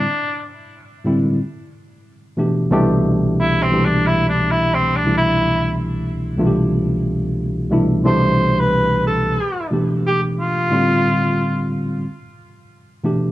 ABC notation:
X:1
M:4/4
L:1/16
Q:"Swing 16ths" 1/4=90
K:C
V:1 name="Cor anglais"
D2 z12 z2 | z4 (3E2 C2 D2 (3E2 D2 E2 (3C2 D2 E2- | E2 z12 z2 | c3 B3 A4 z2 G2 F2- |
F6 z8 z2 |]
V:2 name="Tine electric piano"
z6 [A,,D,G,CE]2 z6 [B,,E,A,DG]2 | [C,,B,,E,A,DG]4 z2 [C,,B,,E,A,DG]6 z2 [C,,B,,E,A,DE]2- | [C,,B,,E,A,DE]4 z2 [C,,B,,E,A,DFG]6 z2 [C,,B,,E,A,DE]2 | [C,,B,,E,A,DG]6 z4 [B,,E,A,DG]4 z2 |
[A,,D,G,CF]6 z8 [B,,E,A,DG]2 |]